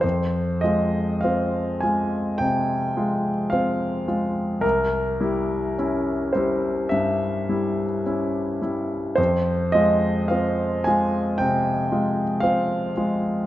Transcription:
\new Staff \with { instrumentName = "Grand piano" } { \time 4/4 \key f \minor \tempo 4 = 53 << { c''8 ees''8 f''8 aes''8 g''4 f''4 | bes'4. c''8 e''4. r8 | c''8 ees''8 f''8 aes''8 g''4 f''4 | } \\ { f,8 <aes f'>8 <c' f'>8 <aes f'>8 c8 <aes f'>8 <c' f'>8 <aes f'>8 | c,8 <g e'>8 <des' e'>8 <g e'>8 g,8 <g e'>8 <des' e'>8 <g e'>8 | f,8 <aes f'>8 <c' f'>8 <aes f'>8 c8 <aes f'>8 <c' f'>8 <aes f'>8 | } >> }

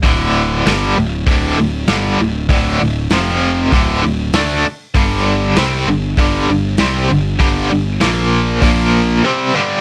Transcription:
<<
  \new Staff \with { instrumentName = "Overdriven electric guitar" } { \clef bass \time 4/4 \key g \major \tempo 4 = 98 <d, a, d>4 <g, d g>8 <d, a,>8 <d, a, d>8 <d, a,>8 <g, d g>8 <d, a,>8 | <d, a, d>8 <d, a,>8 <f, c f>4 <d, a, d>8 <d, a,>8 <d a d'>8 r8 | <g, d g>4 <c g c'>8 <g, d>8 <g, d g>8 <g, d>8 <c g c'>8 <g, d>8 | <g, d g>8 <g, d>8 <bes, f bes>4 <bes, f bes>4 <c g c'>8 <g, d g>8 | }
  \new Staff \with { instrumentName = "Picked electric bass" } { \clef bass \time 4/4 \key g \major d,,4 g,,8 d,,8 d,,8 d,,8 g,,8 d,,8 | d,,8 d,,8 f,,4 d,,8 d,,8 d,8 r8 | g,,4 c,8 g,,8 g,,8 g,,8 c,8 g,,8 | g,,8 g,,8 bes,,4 bes,,4 r4 | }
  \new DrumStaff \with { instrumentName = "Drums" } \drummode { \time 4/4 <hho bd>4 <hho sn>4 <hho bd>4 <hho sn>4 | <hho bd>4 <hho sn>4 <hho bd>4 <hho sn>4 | <hho bd>4 <hho sn>4 <hho bd>4 <hho sn>4 | <hho bd>4 <hho sn>4 <hho bd>4 r4 | }
>>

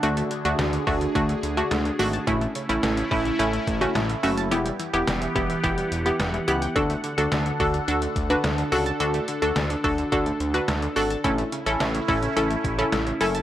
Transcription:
<<
  \new Staff \with { instrumentName = "Synth pluck" } { \time 4/4 \key a \major \tempo 4 = 107 <a d' fis'>8 r16 <a d' fis'>8 r16 <a d' fis'>16 r16 <a d' fis'>8 r16 <a d' fis'>8 r16 <a d' fis'>16 r16 | <a cis' e'>8 r16 <a cis' e'>8 r16 <a cis' e'>16 r16 <a cis' e'>8 r16 <a cis' fis'>8 r16 <a cis' fis'>16 r16 | <b e' g'>8 r16 <b e' g'>8 r16 <b e' g'>16 r16 <b e' g'>8 r16 <b e' g'>8 r16 <b e' g'>16 r16 | <d' fis' a'>8 r16 <d' fis' a'>8 r16 <d' fis' a'>16 r16 <d' fis' a'>8 r16 <d' fis' b'>8 r16 <d' fis' a'>16 r16 |
<d' fis' a'>8 r16 <d' fis' a'>8 r16 <d' fis' a'>16 r16 <d' fis' a'>8 r16 <d' fis' b'>8 r16 <d' fis' a'>16 r16 | <cis' e' a'>8 r16 <cis' e' a'>8 r16 <cis' e' a'>16 r16 <cis' e' a'>8 r16 <cis' e' a'>8 r16 <cis' e' a'>16 r16 | }
  \new Staff \with { instrumentName = "Analog synth pad" } { \time 4/4 \key a \major << { <d d' gis'>1 | <a e'>1 | <e b g'>1 | <d d' a'>1~ |
<d d' a'>1 | <a e'>1 | } \\ { fis'1 | cis'1 | fis''1~ | fis''1~ |
fis''1 | cis'1 | } >> }
  \new Staff \with { instrumentName = "Synth arpeggio sound" } { \clef bass \time 4/4 \key a \major d16 a16 d16 d16 a16 d16 a16 d16 d16 a16 r16 d16 a16 d16 fis'''16 a''16 | cis16 a16 cis16 cis16 a16 cis16 a16 cis16 cis16 a16 r16 cis16 a16 cis16 e'''16 a''16 | e16 g16 e16 e16 g16 e16 g16 e16 e16 g16 r16 e16 g16 e16 fis'''16 g''16 | d16 a16 d16 d16 a16 d16 a16 d16 d16 a16 r16 d16 a16 d16 fis'''16 a''16 |
d16 a16 d16 d16 a16 d16 a16 d16 d16 a16 r16 d16 a16 d16 fis'''16 a''16 | cis16 a16 cis16 cis16 a16 cis16 a16 cis16 cis16 a16 r16 cis16 a16 cis16 e'''16 a''16 | }
  \new Staff \with { instrumentName = "Analog synth bass" } { \clef bass \time 4/4 \key a \major d,8 r16 d,16 d,8 d,8 d,8 d,8 d,8 gis,,8 | a,,8 r16 a,,16 a,,8 a,,8 a,,8 a,,8 a,,8 fis,,8 | e,,8 r16 e,,16 e,,8 e,,8 e,,8 e,,8 e,,8 cis,8 | d,8 r16 d,16 d,8 d,8 d,8 d,8 d,8 cis,8 |
d,8 r16 d,16 d,8 d,8 d,8 d,8 d,8 gis,,8 | a,,8 r16 a,,16 a,,8 a,,8 a,,8 a,,8 a,,8 fis,,8 | }
  \new DrumStaff \with { instrumentName = "Drums" } \drummode { \time 4/4 hh16 hh16 hh16 hh16 <hh sn>16 hh16 <hho bd>16 hh16 <hh bd>16 hh16 hh16 hh16 <hh sn>16 hh16 hho16 hh16 | <hh bd>16 hh16 hh16 hh16 <hh sn>16 hh16 <hho bd>16 hh16 hh16 hh16 <hh bd>16 hh16 <hh sn>16 hh16 hho16 hh16 | hh16 hh16 hh16 hh16 <hh sn>16 hh16 <hh bd>16 hh16 <hh bd>16 hh16 hh16 hh16 <hh sn>16 hh16 hh16 hh16 | <hh bd>16 hh16 hh16 hh16 <hh sn>16 hh16 <hho bd>16 hh16 hh16 hh16 <hh bd>16 hh16 <hh sn>16 hh16 hho16 hh16 |
hh16 hh16 hh16 hh16 <hh sn>16 hh16 <hho bd>16 hh16 <hh bd>16 hh16 hh16 hh16 <hh sn>16 hh16 hho16 hh16 | <hh bd>16 hh16 hh16 hh16 <hh sn>16 hh16 <hho bd>16 hh16 hh16 hh16 <hh bd>16 hh16 <hh sn>16 hh16 hho16 hh16 | }
>>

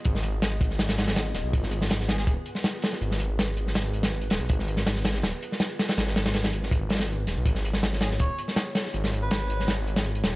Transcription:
<<
  \new Staff \with { instrumentName = "Ambient pad" } { \time 4/4 \key gis \dorian \tempo 4 = 162 << { dis''1 | b'1~ | b'1~ | b'1~ |
b'1 | cis''1~ | cis''1 | } \\ { <b eis' gis'>1~ | <b eis' gis'>1~ | <b eis' gis'>1~ | <b eis' gis'>1~ |
<b eis' gis'>1~ | <b eis' gis'>1~ | <b eis' gis'>1 | } >> }
  \new Staff \with { instrumentName = "Melodica" } { \time 4/4 \key gis \dorian r1 | r4. gis'16 gis'16 gis'16 r4. r16 | r1 | r1 |
r1 | r4. gis'16 r16 cis''8 r4. | r8. b'4. r4. r16 | }
  \new Staff \with { instrumentName = "Detuned saw bass" } { \clef bass \time 4/4 \key gis \dorian gis,,2 gis,,4. dis,,16 b,,16 | gis,,2 dis,,16 r4. r16 | gis,,2 gis,,4. dis,,16 b,,16 | gis,,2 dis,,16 r4. r16 |
gis,,2 gis,,4. dis,,16 b,,16 | gis,,2 dis,,16 r4. r16 | gis,,2 gis,,4. dis,,16 r16 | }
  \new DrumStaff \with { instrumentName = "Drums" } \drummode { \time 4/4 <hh bd>16 sn16 hh8 <hh sn>8 <hh bd>16 sn16 <hh sn>16 <hh sn>16 <hh sn>16 <hh sn>16 <hh sn>8 <hh sn>8 | <hh bd>16 sn16 hh16 sn16 <hh sn>16 sn16 <hh sn>16 sn16 <hh bd>8 hh16 sn16 <hh sn>8 <hh sn>16 sn16 | hh16 sn16 hh8 <hh sn>8 hh16 sn16 <hh sn>8 hh16 <hh sn>16 r16 hh16 <hh sn>8 | <hh bd>16 sn16 hh16 sn16 <hh sn>16 sn16 <hh sn>16 sn16 <hh sn>8 hh16 sn16 <hh sn>8 <hh sn>16 <hh sn>16 |
<hh sn>16 sn16 <hh sn>16 <hh sn>16 <hh sn>16 <hh sn>16 hh16 sn16 <hh bd>8 <hh sn>32 <hh sn>32 <hh sn>16 r8 <hh sn>8 | <hh bd>16 sn16 hh16 sn16 <hh sn>16 sn16 <hh sn>16 sn16 <hh bd>8 hh16 sn16 <hh sn>8 <hh sn>16 sn16 | hh16 sn16 hh8 <hh sn>8 hh16 sn16 <hh sn>8 hh16 <hh sn>16 r16 hh16 <hh sn>8 | }
>>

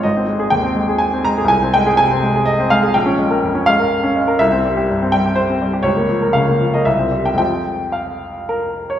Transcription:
<<
  \new Staff \with { instrumentName = "Grand piano" } { \time 3/4 \key aes \major \tempo 4 = 123 ees''4 g''4 aes''8 bes''8 | aes''8 g''8 aes''4 ees''8 f''8 | g''4. f''4. | e''4. g''8 c''4 |
des''4 f''8. ees''16 e''8. g''16 | g''4 f''4 bes'8. des''16 | }
  \new Staff \with { instrumentName = "Grand piano" } { \time 3/4 \key aes \major aes,,16 c'16 aes16 aes'16 ees,16 c'16 aes16 aes'8 c'16 aes16 aes'16 | c,16 c'16 aes16 aes'16 c16 c'16 aes16 aes'8 c'16 aes16 aes'16 | bes,,16 des'16 aes16 bes'16 f,16 des'16 aes16 bes'8 des'16 aes16 bes'16 | c,16 c'16 g16 g'16 g,16 c'16 g16 g'8 c'16 g16 g'16 |
des,16 bes16 f16 bes'16 des16 bes16 f16 bes'16 c,16 c'16 g16 g'16 | <f, aes c' f'>2. | }
>>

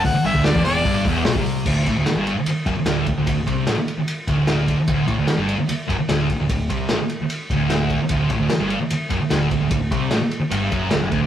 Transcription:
<<
  \new Staff \with { instrumentName = "Harmonica" } { \time 4/4 \key d \mixolydian \tempo 4 = 149 fis''8 e''8 d''8 d''4 r4. | r1 | r1 | r1 |
r1 | r1 | r1 | }
  \new Staff \with { instrumentName = "Distorted electric guitar" } { \clef bass \time 4/4 \key d \mixolydian d,16 r16 g,16 d,8 e,16 e,8 g,8 e,8 b,16 c8. | d,8 a,16 d,16 r16 g,8 r8. fis,16 r16 d,8 d,16 d,16 | d,8 c8 a,16 r4 r16 d,4~ d,16 r16 | d,8 a,16 d,16 r16 g,8 r8. fis,16 r16 d,8 d,16 d,16 |
d,8 c8 a,16 r4 r16 d,4~ d,16 r16 | d,8 a,16 d,16 r16 g,8 r8. fis,16 r16 d,8 d,16 d,16 | d,8 c8 a,16 r8. g,8 fis,8 d,16 fis,16 d,8 | }
  \new Staff \with { instrumentName = "Picked electric bass" } { \clef bass \time 4/4 \key d \mixolydian d,,16 r16 g,,16 d,,8 e,,16 e,,8 g,,8 e,,8 b,,16 c,8. | d,,8 a,,16 d,,16 r16 g,,8 r8. fis,,16 r16 d,,8 d,,16 d,,16 | d,,8 c,8 a,,16 r4 r16 d,,4~ d,,16 r16 | d,,8 a,,16 d,,16 r16 g,,8 r8. fis,,16 r16 d,,8 d,,16 d,,16 |
d,,8 c,8 a,,16 r4 r16 d,,4~ d,,16 r16 | d,,8 a,,16 d,,16 r16 g,,8 r8. fis,,16 r16 d,,8 d,,16 d,,16 | d,,8 c,8 a,,16 r8. g,,8 fis,,8 d,,16 fis,,16 d,,8 | }
  \new DrumStaff \with { instrumentName = "Drums" } \drummode { \time 4/4 <hho bd>8 hho16 bd16 <hho sn>16 bd16 hho8 <hho bd>8 <hho bd>8 <hho sn>16 bd16 hho8 | <cymc bd>8 <bd cymr>8 <cymr sn>8 cymr8 cymr8 <bd cymr>8 <cymr sn>8 <bd cymr>8 | <bd cymr>8 <bd cymr>8 <cymr sn>8 cymr8 cymr8 <bd cymr>8 <cymr sn>8 <bd cymr>8 | <bd cymr>8 <bd cymr>8 <cymr sn>8 cymr8 cymr8 <bd cymr>8 <cymr sn>8 <bd cymr>8 |
<bd cymr>8 <bd cymr>8 <cymr sn>8 cymr8 cymr8 <bd cymr>8 <cymr sn>8 <bd cymr>8 | <bd cymr>8 <bd cymr>8 <cymr sn>8 cymr8 cymr8 <bd cymr>8 <cymr sn>8 <bd cymr>8 | <bd cymr>8 <bd cymr>8 <cymr sn>8 cymr8 cymr8 <bd cymr>8 <cymr sn>8 <bd cymr>8 | }
>>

